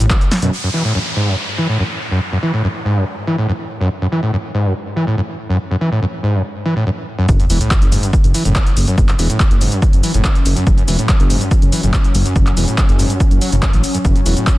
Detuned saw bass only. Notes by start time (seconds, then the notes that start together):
0.00 A1
0.42 F#2
7.29 F#1
7.50 E1
7.82 F#1
8.24 F#1
8.45 F#1
8.77 F#1
8.98 F#1
9.19 E1
9.51 F#1
9.93 F#1
10.14 F#1
10.46 F#1
10.67 F#1
10.88 E1
11.20 F#1
11.62 F#1
11.83 F#1
12.15 F#1
12.36 F#1
12.57 E1
12.89 F#1
13.31 F#1
13.52 F#1
13.73 A1
14.05 F#1
14.26 E1